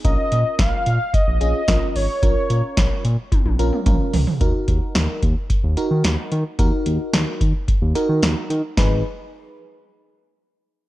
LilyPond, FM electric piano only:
\new Staff \with { instrumentName = "FM electric piano" } { \time 4/4 \key dis \phrygian \tempo 4 = 110 <cis' eis' ais'>4. r4 <cis' eis' gis'>8 <cis' eis' ais'>8. r16 | <cis' eis' ais'>4. r4 <cis' eis' ais'>8 <cis' eis' ais'>8. r16 | <dis' fis' ais'>4. r4 <dis' fis' ais'>4 r8 | <dis' fis' ais'>4. r4 <dis' fis' ais'>4 r8 |
<dis' gis' b'>8 r2. r8 | }